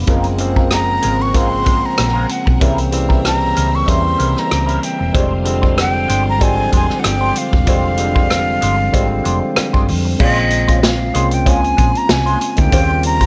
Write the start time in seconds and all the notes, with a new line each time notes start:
0.07 F#1 C#3 F3 G#3 A#3 C4 F4 G#4 A#4 F#5, kick, closed hi-hat
0.24 closed hi-hat
0.38 C#3 F3 G#3 A#3 C4, muted clean electric guitar stroke, closed hi-hat
0.56 G#3 C4 F4 A#4, kick
0.71 A#5, cross-stick, closed hi-hat
1.02 G#1 G#3 C4 F4 A#4, closed hi-hat
1.19 C#6, muted clean electric guitar stroke
1.33 C#3 F3 G#3 A#3 C4 F4 A#4 C6, kick, closed hi-hat
1.52 muted clean electric guitar stroke
1.65 G#3 C4 F4 A#4, kick, closed hi-hat
1.83 A#5, muted clean electric guitar stroke
1.97 A#1, muted clean electric guitar stroke, cross-stick, closed hi-hat
2.14 G#3 C4 F4 A#4
2.29 F#5, muted clean electric guitar stroke, closed hi-hat
2.46 B1, muted clean electric guitar stroke, kick
2.60 C2 C#3 E3 G3 A#3 C4 C#4 E4 A#4 C5 E5, kick, closed hi-hat
2.78 closed hi-hat
2.91 C#3 E3 G3 A#3 C4, muted clean electric guitar stroke, closed hi-hat
3.09 G3 C#4 E4 A#4, kick
3.25 A#5, cross-stick, closed hi-hat
3.55 C#2 G3 C#4 E4 A#4, closed hi-hat
3.73 C#6, muted clean electric guitar stroke
3.86 E2 C#3 E3 G3 A#3 C4 C#4 E4 A#4 C6, kick, closed hi-hat
4.04 muted clean electric guitar stroke
4.18 C2 G3 C#4 E4 A#4, closed hi-hat
4.35 A#5, muted clean electric guitar stroke, cross-stick
4.49 C#2, muted clean electric guitar stroke, cross-stick, closed hi-hat
4.66 G3 C#4 E4 A#4, closed hi-hat
4.81 G5, muted clean electric guitar stroke, closed hi-hat
4.99 E1, muted clean electric guitar stroke
5.13 F1 D3 F3 G3 G#3 C4 D4 F4 G4 C5 F5, kick, closed hi-hat
5.44 D3 F3 G3 G#3 C4, muted clean electric guitar stroke, closed hi-hat
5.62 G#3 D4 G4 C5, kick
5.77 G5, muted clean electric guitar stroke, cross-stick, closed hi-hat
6.08 G1 G#3 D4 G4 C5, closed hi-hat
6.29 A#5
6.39 G#1 D3 F3 G3 G#3 C4 D4 G4 C5, kick, closed hi-hat
6.43 G#5
6.57 muted clean electric guitar stroke
6.72 F1 G#3 D4 G4 C5 G#5, kick, closed hi-hat
6.89 muted clean electric guitar stroke, cross-stick
6.99 F#5
7.04 G1 G5, muted clean electric guitar stroke, cross-stick, closed hi-hat
7.21 G#3 D4 G4 C5
7.36 F5, muted clean electric guitar stroke, closed hi-hat
7.53 E1, muted clean electric guitar stroke, kick
7.66 F1 D3 F3 G3 G#3 C4 D4 G4 C5, kick, closed hi-hat
7.97 D3 F3 G3 G#3 C4, muted clean electric guitar stroke, closed hi-hat
8.15 G#3 D4 G4 C5, kick
8.30 cross-stick, closed hi-hat
8.61 G1 G#3 D4 G4 C5, closed hi-hat
8.78 muted clean electric guitar stroke
8.92 G#1 D3 F3 G3 G#3 C4 D4 G4 C5, kick, closed hi-hat
9.10 muted clean electric guitar stroke
9.24 F1 G#3 D4 G4 C5, closed hi-hat
9.56 muted clean electric guitar stroke, muted fingered electric bass stroke, cross-stick, closed hi-hat
9.73 G1 G#3 D4 G4 C5, kick
9.88 F2, muted clean electric guitar stroke, open hi-hat
10.05 muted clean electric guitar stroke
10.19 A#1 C#3 G#3 A#3 C4 C#4 F4 C5 D#5, kick, crash
10.36 closed hi-hat
10.51 muted clean electric guitar stroke, closed hi-hat
10.68 G#3 C#4 F4 C5, kick, closed hi-hat
10.83 F5, muted clean electric guitar stroke, snare, closed hi-hat
11.13 C2 G#3 A#3 C4 C#4 F4 C5, closed hi-hat
11.31 G5, closed hi-hat
11.46 C#2 G#3 C#4 F4 C5 G#5, kick, closed hi-hat
11.63 muted clean electric guitar stroke, closed hi-hat
11.77 A#1 G#3 C#4 F4 C5, kick, closed hi-hat
11.95 A#5, muted clean electric guitar stroke, closed hi-hat
12.09 C2 G#5, muted clean electric guitar stroke, snare, closed hi-hat
12.26 G#3 C#4 F4 C5, closed hi-hat
12.41 muted clean electric guitar stroke, closed hi-hat
12.52 C#3 G#5
12.57 D2 G#3 A#3 C4 D#4 G5, muted clean electric guitar stroke, kick, closed hi-hat
12.71 D#2 C#3 G3 A#3 C4 C#4 F4 G4 C5, kick, closed hi-hat
13.03 A#5, muted clean electric guitar stroke, closed hi-hat
13.21 C#4 F4 G4 C5, kick, closed hi-hat